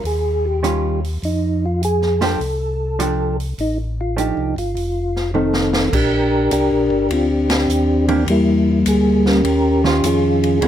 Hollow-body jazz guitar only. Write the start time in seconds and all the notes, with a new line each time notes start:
0.63 D#3 G3 C#4 F4
2.21 F3 A3 D4 G4
2.99 F3 A3 D4 G4
4.17 F3 A3 D4 G4
5.34 D#3 A3
8.08 E3 A#3 D4 G4
9.84 D#3 C#4 F4
10.61 C#3 G#3 B3 E4